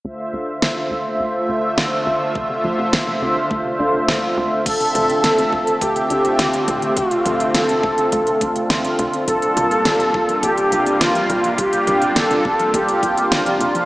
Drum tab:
CC |----------------|----------------|x---------------|----------------|
HH |----------------|----------------|xxxxxx-xxxxxxxxx|xxxxxx-xxxxxxxxx|
SD |----o-------o---|----o-------o---|----o-------o---|----o-------o---|
T2 |----------------|----------------|--o-----------o-|--o-------------|
BD |----------------|o---o---o-------|o-----o-o-------|o-----o-o-o-----|

CC |----------------|----------------|
HH |xxxxxx-xxxxxxxxx|xxxxxx-xxxxxxxxx|
SD |----o-------o---|----o-------o---|
T2 |--o-----------o-|--o-------------|
BD |o-----o-o-------|o-----o-o-o-----|